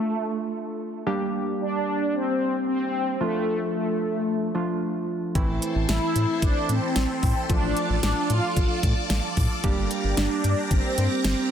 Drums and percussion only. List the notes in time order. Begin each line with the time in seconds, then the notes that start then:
5.35 kick, closed hi-hat
5.62 closed hi-hat
5.89 snare, closed hi-hat
6.16 closed hi-hat
6.42 kick, closed hi-hat
6.69 closed hi-hat
6.96 snare, closed hi-hat
7.23 kick, open hi-hat
7.50 kick, closed hi-hat
7.77 closed hi-hat
8.03 snare, closed hi-hat
8.30 closed hi-hat
8.57 kick, closed hi-hat
8.83 kick, closed hi-hat
9.10 snare, closed hi-hat
9.37 kick, open hi-hat
9.64 kick, closed hi-hat
9.91 closed hi-hat
10.17 snare, closed hi-hat
10.44 closed hi-hat
10.71 kick, closed hi-hat
10.98 closed hi-hat
11.24 snare, closed hi-hat